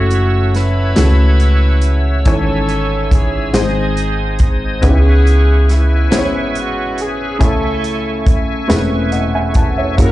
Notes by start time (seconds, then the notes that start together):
Already playing: F#1 A3 C#4 E4 F#4 A4 C#5 E5 F#5 E6
0.11 closed hi-hat
0.55 E4 B4, snare, closed hi-hat
0.95 C#2 A3 C#4 E4 F#4 G#4, snare, closed hi-hat
1.03 A4
1.40 closed hi-hat
1.81 closed hi-hat
2.25 G#1 G#2 E3 C#4 E4 A4 C#5 E5 G#5, kick, closed hi-hat
2.69 closed hi-hat
3.11 G#4, kick, closed hi-hat
3.53 G#1 G#2 G#3 C4 D#4 G#4 C5 D#5 D#6, snare, closed hi-hat
3.97 closed hi-hat
4.39 kick, closed hi-hat
4.82 C#2 C#3 B3 C#4 D#4 G#4 B4 E5 C#6, kick, closed hi-hat
4.86 E4 G#4
5.27 closed hi-hat
5.69 G#3 B3 E4, snare, closed hi-hat
6.10 G#1 B3 C#4 E4 G#4 C5, snare, closed hi-hat
6.19 C#5
6.55 F#4, closed hi-hat
6.98 G#4, closed hi-hat
7.39 C#2 C#3 A3 C#4 E4 A4 E5 G#5 C#6, kick, closed hi-hat
7.43 E4 A4
7.84 closed hi-hat
8.27 kick, closed hi-hat
8.68 E1 A3 C4 E4 G#4 B4, snare, closed hi-hat
8.74 C#4
9.12 D#5 F#5, closed hi-hat
9.35 E5 G#5
9.54 F#5 A5, kick, closed hi-hat
9.77 C#5 E5
9.97 F#1 A#3 C#4 E4 F#4 G#4 A#4 F#5 C#6, kick, closed hi-hat
10.05 A#4